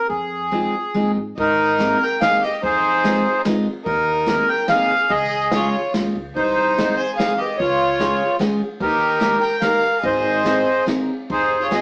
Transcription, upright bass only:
0.10 0.65 F2 medium
0.95 1.14 A#2 medium
1.17 1.36 G#2 medium
1.38 1.92 G#2 medium
2.63 3.17 F2 medium
3.86 4.40 D#2 medium
5.10 5.65 C#2 medium
5.94 6.13 D#2 medium
6.15 6.34 C#2 medium
6.36 6.91 C2 medium
7.60 8.12 C#2 medium
8.81 9.34 D#2 medium
10.03 10.59 G#1 medium
11.30 11.81 F1 medium

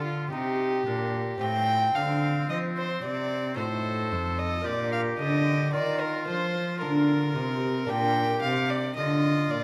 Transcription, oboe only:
0.00 0.31 F4 medium
0.31 0.85 D#4 medium
0.85 1.20 D4 medium
1.39 3.58 C4 medium
3.57 4.63 A4 medium
4.64 5.71 G4 medium
5.73 7.58 F4 medium
7.89 8.92 G4 medium
8.97 9.64 F4 medium

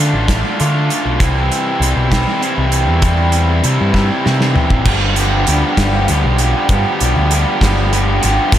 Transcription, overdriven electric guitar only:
0.00 0.27 D3 medium
0.00 0.28 A3 medium
0.00 0.28 D4 medium
0.00 0.28 F4 medium
0.28 0.58 D3 loud
0.28 0.58 A3 loud
0.28 0.59 D4 medium
0.28 0.59 F4 loud
0.59 1.19 D3 medium
0.59 1.19 A3 medium
0.59 1.19 D4 medium
0.59 1.19 F4 loud
1.19 1.81 C3 loud
1.19 1.81 E3 loud
1.19 1.82 G3 loud
1.19 1.81 C4 loud
1.19 1.82 E4 loud
1.81 2.09 C3 medium
1.81 2.09 E3 medium
1.81 2.10 G3 medium
1.81 2.10 C4 medium
1.81 2.10 E4 medium
2.10 2.40 C3 medium
2.10 2.40 E3 medium
2.10 2.41 G3 loud
2.10 2.41 C4 medium
2.10 2.41 E4 loud
2.41 3.01 C3 medium
2.41 3.01 E3 medium
2.41 3.02 G3 loud
2.41 3.02 C4 medium
2.41 3.03 E4 loud
3.02 3.62 C3 loud
3.02 3.63 E3 loud
3.02 3.63 G3 loud
3.02 3.64 C4 medium
3.02 3.64 E4 loud
3.64 3.92 C3 medium
3.64 3.93 E3 medium
3.64 3.94 G3 medium
3.64 3.94 C4 medium
3.64 3.94 E4 medium
3.94 4.23 C3 loud
3.94 4.24 E3 medium
3.94 4.25 G3 loud
3.94 4.25 C4 medium
3.94 4.25 E4 loud
4.24 4.85 C3 medium
4.24 4.85 E3 medium
4.24 4.85 G3 medium
4.24 4.85 C4 medium
4.24 4.85 E4 medium
4.86 5.16 G2 medium
4.86 5.15 D3 medium
4.86 5.16 F3 loud
4.86 5.17 G3 loud
4.86 5.18 B3 loud
4.86 5.18 G4 loud
5.16 5.47 G2 medium
5.16 5.46 D3 medium
5.16 5.47 F3 medium
5.16 5.48 G3 medium
5.16 5.48 B3 medium
5.16 5.49 G4 medium
5.47 5.77 G2 medium
5.47 5.78 D3 medium
5.47 5.78 F3 medium
5.47 5.79 G3 medium
5.47 5.80 B3 medium
5.47 5.79 G4 medium
5.78 6.08 G2 medium
5.78 6.09 D3 medium
5.78 6.09 F3 medium
5.78 6.10 G3 medium
5.78 6.11 B3 loud
5.78 6.10 G4 loud
6.09 6.39 G2 medium
6.09 6.39 D3 medium
6.09 6.41 F3 medium
6.09 6.40 G3 medium
6.09 6.42 B3 medium
6.09 6.41 G4 loud
6.41 6.69 G2 medium
6.41 6.70 D3 medium
6.41 6.71 F3 medium
6.41 6.71 G3 medium
6.41 6.72 B3 medium
6.41 6.72 G4 medium
6.70 7.00 G2 loud
6.70 7.00 D3 loud
6.70 7.01 F3 loud
6.70 7.02 G3 loud
6.70 7.02 B3 loud
6.70 7.02 G4 loud
7.02 7.31 G2 medium
7.02 7.31 D3 medium
7.02 7.32 F3 medium
7.02 7.32 G3 medium
7.02 7.33 B3 medium
7.02 7.33 G4 medium
7.32 7.61 G2 medium
7.32 7.61 D3 medium
7.32 7.62 F3 medium
7.32 7.62 G3 medium
7.32 7.64 B3 medium
7.32 7.63 G4 medium
7.62 7.91 G2 medium
7.62 7.91 D3 medium
7.62 7.92 F3 medium
7.62 7.92 G3 loud
7.62 7.93 B3 medium
7.62 7.93 G4 loud
7.92 8.22 G2 medium
7.92 8.22 D3 medium
7.92 8.22 F3 medium
7.92 8.23 G3 medium
7.92 8.24 B3 medium
7.92 8.23 G4 medium
8.23 8.51 G2 medium
8.23 8.52 D3 medium
8.23 8.52 F3 medium
8.23 8.52 G3 medium
8.23 8.54 B3 medium
8.23 8.52 G4 medium
8.53 8.59 A2 loud
8.53 8.59 E3 loud
8.53 8.59 C4 loud
8.53 8.59 E4 loud
8.53 8.59 A4 loud

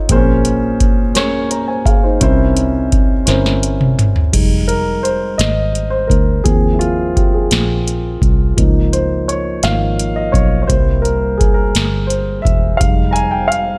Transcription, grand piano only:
0.00 0.12 D#4 medium
0.00 0.12 F4 medium
0.00 0.12 A4 medium
0.00 0.12 C#5 medium
0.09 1.12 A#2 medium
0.09 0.16 C4 medium
0.09 1.00 G#4 medium
0.09 1.01 A#4 medium
0.09 1.01 C5 medium
0.16 1.03 C#4 medium
1.14 2.06 C#4 medium
1.14 1.51 G#4 medium
1.14 1.51 A#4 medium
1.14 1.49 C#5 medium
1.51 1.68 C#5 soft
1.51 1.68 A#5 medium
1.68 1.85 C5 soft
1.68 1.85 G#5 medium
1.86 2.04 G#4 soft
1.86 2.03 F5 medium
2.03 2.38 D#4 medium
2.03 2.21 C5 medium
2.20 3.24 C3 medium
2.20 3.12 C#4 medium
2.20 3.12 E4 medium
2.20 3.13 A#4 medium
2.20 3.13 C5 medium
3.25 4.17 C#4 medium
3.25 4.18 E4 medium
3.25 4.18 A#4 medium
3.25 4.18 C5 medium
4.32 5.35 G3 soft
4.32 5.36 G#3 soft
4.32 5.36 D#4 soft
4.68 5.05 A#4 medium
5.03 5.40 C5 medium
5.38 5.94 D#5 medium
5.90 6.10 C5 medium
6.07 6.46 A#4 medium
6.44 7.47 F3 soft
6.44 7.48 A#3 soft
6.44 7.48 C4 soft
6.44 6.74 G#4 medium
6.72 6.80 E4 soft
6.79 7.17 F4 medium
7.15 7.34 G4 medium
7.34 7.67 G#4 medium
8.57 9.59 F3 medium
8.57 9.59 A#3 soft
8.57 9.60 D#4 medium
8.93 9.29 C5 medium
9.28 9.36 C#5 medium
9.64 9.95 F3 soft
9.64 9.96 A#3 soft
9.64 9.96 D#4 soft
9.64 10.18 F5 medium
10.16 10.34 D#5 medium
10.32 10.61 C#5 medium
10.62 10.69 C#5 medium
10.67 11.71 G3 soft
10.67 11.71 A#3 soft
10.67 11.71 E4 medium
10.67 11.05 C5 medium
11.02 11.39 A#4 medium
11.38 11.57 G#4 medium
11.54 11.62 A#4 medium
12.07 12.45 C5 medium
12.42 12.80 E5 medium
12.77 13.78 G3 soft
12.77 13.78 G#3 soft
12.77 13.78 D#4 soft
12.77 13.10 F5 medium
13.11 13.18 G#5 medium
13.11 13.15 A#5 medium
13.31 13.50 G5 medium
13.48 13.78 F5 medium

